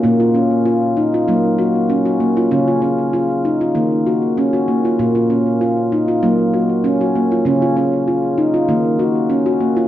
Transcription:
<<
  \new Staff \with { instrumentName = "Handpan" } { \time 4/4 \key bes \minor \tempo 4 = 97 bes16 f'16 des'8 f'8 ees'16 f'16 bes8 ges'8 des'16 ges'16 bes16 f'16 | des'16 f'16 des'8 f'8 ees'16 f'16 bes8 ges'8 des'16 ges'16 bes16 f'16 | bes16 f'16 des'8 f'8 ees'16 f'16 bes8 ges'8 des'16 ges'16 bes16 f'16 | des'16 f'16 des'8 f'8 ees'16 f'16 bes8 ges'8 des'16 ges'16 bes16 f'16 | }
  \new Staff \with { instrumentName = "Handpan" } { \clef bass \time 4/4 \key bes \minor bes,2 ges2 | des2 ees2 | bes,2 ges2 | des2 ees2 | }
>>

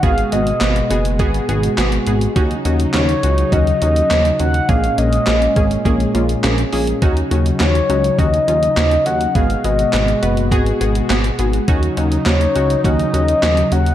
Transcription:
<<
  \new Staff \with { instrumentName = "Soft synth lead" } { \time 4/4 \key ees \minor \tempo 4 = 103 f''8 ees''4. r2 | r4 des''4 ees''4. ges''8 | f''8 ees''4. r2 | r4 des''4 ees''4. ges''8 |
f''8 ees''4. r2 | r4 des''4 ees''4. ges''8 | }
  \new Staff \with { instrumentName = "Synth pluck" } { \time 4/4 \key ees \minor <ces' ges' aes'>8 <ces' ges' aes'>8 <ces' ges' ces''>8 <ces' ges' aes'>8 <ces' ges' aes'>8 <ces' ges' aes'>8 <ces' ges' aes'>8 <ces' ges' aes'>8 | <des' ees' ges'>8 <des' ees' ges'>8 <des' ees' ges'>8 <des' ees' ges'>8 <des' ees' ges'>8 <des' ees' ges'>8 <des' ees' ges'>8 <des' ees' ges'>8 | <bes des' aes'>8 <bes des' aes'>8 <bes des' aes'>8 <bes des' aes'>8 <bes des' aes'>8 <bes des' f'>8 <bes des' aes'>8 <bes des' aes'>8 | <des' ees' ges'>8 <des' ees' ges'>8 <des' ees' ges'>8 <des' ees' ges'>8 <des' ees' ges'>8 <des' ees' f'>8 <des' ees' ges'>8 <des' ees' ges'>8 |
<ces' ges' aes'>8 <ces' ges' aes'>8 <ces' ges' aes'>8 <ces' ges' ces''>8 <ces' ges' aes'>8 <ces' ges' aes'>8 <ces' ges' aes'>8 <ces' ges' aes'>8 | <des' ees' ges'>8 <des' ees' ges'>8 <des' ees' ges'>8 <des' ees' ges'>8 <des' ees' ges'>8 <des' ees' ges'>8 <des' ees' ges'>8 <des' ees' ges'>8 | }
  \new Staff \with { instrumentName = "Analog synth pad" } { \clef bass \time 4/4 \key ees \minor <ces aes ges'>1 | <des ges ees'>1 | <bes, aes des'>1 | <des ges ees'>1 |
<ces aes ges'>1 | <des ges ees'>1 | }
  \new Staff \with { instrumentName = "Analog synth bass" } { \clef bass \time 4/4 \key ees \minor aes,,8 aes,,8 aes,,8 ges,,8 aes,,8 aes,,8 aes,,8 aes,,8 | ees,8 ees,8 ees,8 des,8 ees,8 ees,8 ees,8 ees,8 | bes,,8 bes,,8 bes,,8 aes,,8 bes,,8 bes,,8 bes,,8 bes,,8 | ees,8 ees,8 ees,8 des,8 ees,8 ees,8 ees,8 ees,8 |
aes,,8 aes,,8 aes,,8 ges,,8 aes,,8 aes,,8 aes,,8 aes,,8 | ees,8 ees,8 ees,8 des,8 ees,8 ees,8 ees,8 ees,8 | }
  \new DrumStaff \with { instrumentName = "Drums" } \drummode { \time 4/4 <hh bd>16 hh16 hh16 hh16 <hc hh sn>16 hh16 hh16 hh16 <hh bd>16 hh16 hh16 hh16 <hc hh sn>16 hh16 hh16 hh16 | <hh bd>16 hh16 hh16 hh16 <hc hh sn>16 hh16 hh16 hh16 <hh bd>16 hh16 hh16 hh16 <hc hh sn>16 hh16 hh16 hh16 | <hh bd>16 hh16 hh16 hh16 <hc hh sn>16 hh16 <hh bd>16 hh16 <hh bd>16 hh16 hh16 hh16 <hc hh sn>16 hh16 hho16 hh16 | <hh bd>16 hh16 hh16 hh16 <hc hh sn>16 hh16 hh16 hh16 <hh bd>16 hh16 hh16 hh16 <hc hh sn>16 hh16 hh16 hh16 |
<hh bd>16 hh16 hh16 hh16 <hc hh sn>16 hh16 hh16 hh16 <hh bd>16 hh16 hh16 hh16 <hc hh sn>16 hh16 hh16 hh16 | <hh bd>16 hh16 hh16 hh16 <hc hh sn>16 hh16 hh16 hh16 <hh bd>16 hh16 hh16 hh16 <hc hh sn>16 hh16 hh16 hh16 | }
>>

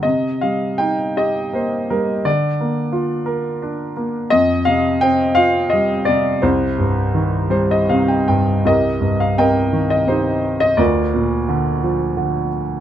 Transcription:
<<
  \new Staff \with { instrumentName = "Grand piano" } { \time 3/4 \key c \minor \tempo 4 = 84 << { r2. | r2. | r2. | r4. c''16 ees''16 f''16 g''16 g''8 |
<g' bes'>4 <bes' ees''>4 <ees' g'>4 | <f' bes'>2~ <f' bes'>8 r8 | } \\ { ees''8 f''8 g''8 ees''8 c''8 bes'8 | d''2~ d''8 r8 | ees''8 f''8 g''8 f''8 ees''8 d''8 | c''2 r4 |
ees''8. f''16 g''8. ees''16 c''8. ees''16 | d''2~ d''8 r8 | } >> }
  \new Staff \with { instrumentName = "Grand piano" } { \clef bass \time 3/4 \key c \minor c8 g8 ees'8 g'8 bes8 g8 | d8 bes8 f'8 bes'8 d'8 bes8 | f,8 c8 c'8 f'8 g8 c8 | c,8 g,8 ees8 g8 c8 g,8 |
c,8 g,8 c8 ees8 c4 | d,8 bes,8 d8 f8 d4 | }
>>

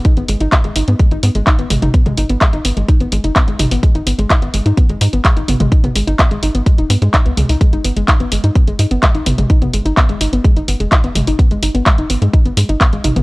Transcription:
<<
  \new Staff \with { instrumentName = "Synth arpeggio sound" } { \time 4/4 \key gis \phrygian \tempo 4 = 127 dis'16 b16 gis16 dis'16 b16 gis16 dis'16 b16 gis16 dis'16 b16 gis16 dis'16 b16 gis16 dis'16 | b16 gis16 dis'16 b16 gis16 dis'16 b16 gis16 dis'16 b16 gis16 dis'16 b16 gis16 dis'16 b16 | gis16 dis'16 b16 gis16 dis'16 b16 gis16 dis'16 b16 gis16 dis'16 b16 gis16 dis'16 b16 gis16 | dis'16 b16 gis16 dis'16 b16 gis16 dis'16 b16 gis16 dis'16 b16 gis16 dis'16 b16 gis16 dis'16 |
gis16 dis'16 b16 gis16 dis'16 b16 gis16 dis'16 b16 gis16 dis'16 b16 gis16 dis'16 b16 gis16 | dis'16 b16 gis16 dis'16 b16 gis16 dis'16 b16 gis16 dis'16 b16 gis16 dis'16 b16 gis16 dis'16 | b16 gis16 dis'16 b16 gis16 dis'16 b16 gis16 dis'16 b16 gis16 dis'16 b16 gis16 dis'16 b16 | }
  \new Staff \with { instrumentName = "Analog synth bass" } { \clef bass \time 4/4 \key gis \phrygian r16 gis,,16 gis,,16 gis,,16 r16 gis,,16 gis,,16 gis,16 r16 gis,,16 gis,16 gis,,16 r16 gis,,16 gis,,16 gis,,16 | r16 gis,,16 gis,,16 gis,,16 r16 gis,,16 gis,,16 gis,,16 r16 gis,,16 gis,,16 fis,,16 r16 gis,,16 gis,,16 gis,,16 | r16 gis,,16 gis,,16 gis,,16 r16 gis,,16 gis,,16 gis,16 r16 gis,,16 gis,16 gis,,16 r16 gis,,16 gis,,16 gis,,16 | r16 gis,,16 gis,,16 gis,,16 r16 gis,,16 gis,,16 gis,,16 r16 dis,,16 gis,16 gis,16 r16 cis,16 cis,16 cis,16 |
r16 gis,,16 gis,,16 gis,,16 r16 gis,,16 gis,,16 gis,16 r16 gis,,16 gis,16 gis,,16 r16 a,,16 a,,16 a,,16 | r16 gis,,16 gis,,16 gis,,16 r16 gis,,16 gis,,16 gis,,16 r16 gis,,16 gis,,16 fis,,16 r16 gis,,16 gis,,16 gis,,16 | r16 gis,,16 gis,,16 gis,,16 r16 gis,,16 gis,,16 gis,16 r16 gis,,16 gis,16 gis,,16 r16 a,,16 a,,16 a,,16 | }
  \new DrumStaff \with { instrumentName = "Drums" } \drummode { \time 4/4 <hh bd>16 hh16 hho16 hh16 <hc hh bd>16 hh16 hho16 hh16 <hh bd>16 hh16 hho16 hh16 <hc hh bd>16 hh16 <hho toml>16 <hh toml>16 | <hh bd>16 <hh toml>16 hho16 hh16 <hc hh bd>16 hh16 hho16 hh16 <hh bd>16 hh16 hho16 hh16 <hc hh bd>16 hh16 <hho toml>16 hho16 | <hh bd>16 hh16 hho16 hh16 <hc hh bd>16 hh16 hho16 hh16 <hh bd>16 hh16 hho16 hh16 <hc hh bd>16 hh16 <hho toml>16 <hh toml>16 | <hh bd>16 <hh toml>16 hho16 hh16 <hc hh bd>16 hh16 hho16 hh16 <hh bd>16 hh16 hho16 hh16 <hc hh bd>16 hh16 <hho toml>16 hho16 |
<hh bd>16 hh16 hho16 hh16 <hc hh bd>16 hh16 hho16 hh16 <hh bd>16 hh16 hho16 hh16 <hc hh bd>16 hh16 <hho toml>16 <hh toml>16 | <hh bd>16 <hh toml>16 hho16 hh16 <hc hh bd>16 hh16 hho16 hh16 <hh bd>16 hh16 hho16 hh16 <hc hh bd>16 hh16 <hho toml>16 hho16 | <hh bd>16 hh16 hho16 hh16 <hc hh bd>16 hh16 hho16 hh16 <hh bd>16 hh16 hho16 hh16 <hc hh bd>16 hh16 <hho toml>16 <hh toml>16 | }
>>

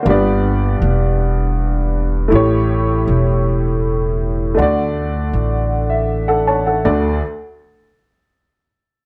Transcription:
<<
  \new Staff \with { instrumentName = "Upright piano" } { \time 6/8 \key d \major \tempo 4. = 53 << { r2. | r2. | r4. r16 e''8 <a' fis''>16 <cis'' a''>16 <a' fis''>16~ | <a' fis''>16 r2 r8. | } \\ { <bes b d' g' d''>2. | <a e' g' cis''>2. | <a d' fis' d''>2. | <a d' fis' d''>8 r2 r8 | } >> }
  \new Staff \with { instrumentName = "Upright piano" } { \clef bass \time 6/8 \key d \major g,4. r4. | a,4. r4. | d4. r4. | d,8 r2 r8 | }
  \new Staff \with { instrumentName = "Upright bass" } { \clef bass \time 6/8 \key d \major g,,4 e,,2 | a,,4 e,,2 | d,4 a,,2 | d,8 r2 r8 | }
>>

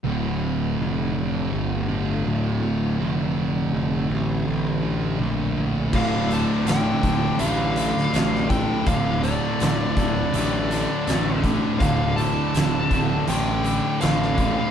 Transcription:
<<
  \new Staff \with { instrumentName = "Lead electric guitar" } { \time 4/4 \key d \minor \tempo 4 = 82 r1 | r1 | f''8 a''8 g''4 f''4. g''8 | f''8 d''4 d''2 r8 |
f''8 a''4. g''4 f''4 | }
  \new Staff \with { instrumentName = "Distorted electric guitar" } { \clef bass \time 4/4 \key d \minor <d, a, d>2.~ <d, a, d>8 <d, a, d>8 | <d, a, d>2.~ <d, a, d>8 <d, a, d>8 | <d, a, d>2.~ <d, a, d>8 <d, a, d>8 | <d, a, d>2.~ <d, a, d>8 <d, a, d>8 |
<d, a, d>2.~ <d, a, d>8 <d, a, d>8 | }
  \new Staff \with { instrumentName = "Distorted electric guitar" } { \clef bass \time 4/4 \key d \minor <d, a, d>2~ <d, a, d>8 <d, a, d>8 <d, a, d>4 | <d, a, d>2~ <d, a, d>8 <d, a, d>8 <d, a, d>4 | <d, a, d>2 <d, a, d>2 | <d, a, d>2 <d, a, d>2 |
<d, a, d>2 <d, a, d>2 | }
  \new Staff \with { instrumentName = "Distorted electric guitar" } { \clef bass \time 4/4 \key d \minor r1 | r1 | <d, a, d>8 <d, a, d>8 <d, a, d>8 <d, a, d>8 <d, a, d>8 <d, a, d>8 <d, a, d>8 <d, a, d>8 | <d, a, d>8 <d, a, d>8 <d, a, d>8 <d, a, d>8 <d, a, d>8 <d, a, d>8 <d, a, d>8 <d, a, d>8 |
<d, a, d>8 <d, a, d>8 <d, a, d>8 <d, a, d>8 <d, a, d>8 <d, a, d>8 <d, a, d>8 <d, a, d>8 | }
  \new Staff \with { instrumentName = "Picked electric bass" } { \clef bass \time 4/4 \key d \minor d,,4 f,,4 g,,4 d,,4 | f,,4 f,,8 a,,8 a,,4 bes,,4 | d,,4 d,,8 d,,8 a,,4 a,,4 | d,,4 d,,8 d,,8 a,,4 a,,4 |
d,,4 d,,8 d,,8 a,,4 a,,4 | }
  \new DrumStaff \with { instrumentName = "Drums" } \drummode { \time 4/4 r4 r4 r4 r4 | r4 r4 r4 r4 | <cymc bd>8 hh8 <hh sn>8 <hh bd>8 hh8 hh16 sn16 <hh sn>16 sn16 <hh bd>8 | <hh bd>8 hh8 <hh sn>8 <hh bd>8 hh8 hh8 <hh sn>8 <hh bd>8 |
<hh bd>8 hh8 <hh sn>8 <hh bd>8 hh8 hh8 <hh sn>16 sn16 <hh bd>8 | }
>>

